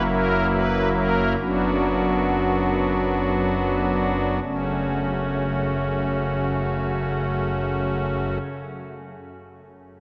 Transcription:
0.00 1.35 F#1 medium
0.00 1.36 F#2 medium
0.00 1.36 F#3 soft
0.00 1.36 A#3 soft
0.00 1.36 E4 soft
0.11 0.46 A#4 loud
0.53 0.89 B4 loud
0.96 1.33 A#4 loud
1.40 4.40 F#1 medium
1.40 4.39 F#2 medium
1.40 4.39 F#3 medium
1.40 4.40 B3 medium
1.40 4.40 D4 medium
1.40 4.40 F#4 loud
4.43 8.38 F#1 medium
4.43 8.38 F#2 medium
4.43 8.38 C#3 soft
4.43 8.38 A3 soft
4.43 8.38 C#4 soft
4.43 8.38 F#4 medium

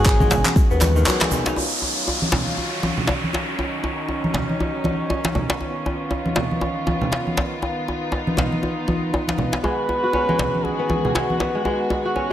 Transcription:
0.00 0.28 G#1 loud
0.00 1.53 D#3 medium
0.00 0.19 G#3 medium
0.00 1.53 G#3 medium
0.00 0.70 B3 medium
0.00 1.53 B3 medium
0.00 1.41 F#4 medium
0.00 1.53 F#4 medium
0.00 1.06 G#4 loud
0.05 1.79 C#4 medium
0.05 kick loud
0.05 clap loud
0.05 djembe tone medium
0.05 shaker medium
0.20 0.99 G#3 medium
0.20 kick medium
0.20 high conga medium
0.20 shaker soft
0.30 0.43 G#1 medium
0.30 djembe slap loud
0.30 djembe tone medium
0.30 low conga loud
0.30 shaker medium
0.45 clap medium
0.45 high conga medium
0.45 shaker soft
0.56 kick loud
0.56 djembe tone medium
0.56 shaker soft
0.71 1.04 D#2 loud
0.71 2.57 B3 medium
0.71 shaker soft
0.81 clap medium
0.81 djembe tone medium
0.81 high conga medium
0.81 shaker medium
0.96 1.62 D#3 medium
0.96 shaker soft
1.06 1.62 F#3 medium
1.06 clap loud
1.06 djembe tone medium
1.06 shaker soft
1.21 1.30 G#3 medium
1.21 clap medium
1.21 djembe slap loud
1.21 high conga medium
1.21 shaker soft
1.31 1.62 G#3 medium
1.31 djembe tone medium
1.31 low conga medium
1.31 shaker medium
1.46 3.09 D#4 medium
1.46 djembe slap loud
1.46 shaker soft
1.56 9.60 D#3 medium
1.56 5.56 F#3 medium
1.56 7.58 C#4 medium
1.56 3.57 F4 medium
1.56 downlifter medium
1.56 djembe tone medium
1.82 djembe tone medium
2.08 djembe tone medium
2.22 high conga medium
2.32 djembe slap loud
2.32 djembe tone medium
2.32 low conga loud
2.47 high conga medium
2.57 djembe tone medium
2.83 high conga medium
2.83 djembe tone medium
2.97 low conga medium
3.07 djembe slap medium
3.07 djembe tone medium
3.24 high conga medium
3.33 djembe slap medium
3.33 djembe tone medium
3.58 5.58 D#4 medium
3.58 djembe tone medium
3.84 djembe tone medium
4.08 djembe tone medium
4.24 high conga medium
4.34 djembe slap medium
4.34 djembe tone medium
4.34 low conga loud
4.49 high conga medium
4.60 djembe tone medium
4.84 high conga loud
4.84 djembe tone medium
5.10 djembe tone medium
5.25 djembe slap medium
5.25 high conga medium
5.35 djembe tone medium
5.35 low conga medium
5.50 djembe slap loud
5.60 12.33 B3 medium
5.60 9.60 F4 medium
5.60 djembe tone medium
5.86 djembe tone medium
6.11 djembe tone medium
6.26 high conga medium
6.36 djembe slap medium
6.36 djembe tone medium
6.36 low conga medium
6.51 high conga medium
6.61 djembe tone medium
6.87 djembe tone medium
6.87 high conga medium
7.01 low conga loud
7.12 djembe slap medium
7.12 djembe tone medium
7.27 high conga medium
7.37 djembe slap loud
7.37 djembe tone medium
7.62 9.62 D#4 medium
7.62 djembe tone medium
7.88 djembe tone medium
8.12 djembe tone medium
8.27 high conga medium
8.37 djembe slap medium
8.37 djembe tone medium
8.37 low conga medium
8.52 high conga medium
8.63 djembe tone medium
8.88 djembe tone medium
8.88 high conga medium
9.14 djembe tone medium
9.28 djembe slap medium
9.28 high conga medium
9.38 djembe tone medium
9.38 low conga medium
9.53 djembe slap medium
9.64 12.33 D#3 medium
9.64 10.28 G#3 medium
9.64 12.33 G#3 medium
9.64 12.33 F#4 medium
9.64 10.66 B4 loud
9.64 djembe tone medium
9.89 djembe tone medium
10.04 11.50 F#4 medium
10.13 11.88 C#4 medium
10.13 djembe tone medium
10.29 11.14 G#3 medium
10.29 high conga medium
10.39 djembe slap loud
10.39 djembe tone medium
10.39 low conga medium
10.55 high conga medium
10.65 11.15 G#4 medium
10.65 djembe tone medium
10.79 11.40 B3 medium
10.90 djembe tone medium
10.90 high conga medium
11.04 12.33 G#4 medium
11.04 low conga medium
11.15 11.54 G#3 medium
11.15 11.62 F#4 medium
11.15 djembe slap medium
11.15 djembe tone medium
11.30 high conga medium
11.40 12.33 B3 medium
11.40 djembe slap medium
11.40 djembe tone medium
11.55 11.64 G#3 medium
11.65 12.29 G#3 medium
11.65 12.33 F#4 medium
11.65 djembe tone medium
11.90 djembe tone medium
12.05 12.33 F#4 medium
12.16 12.33 C#4 medium
12.16 djembe tone medium

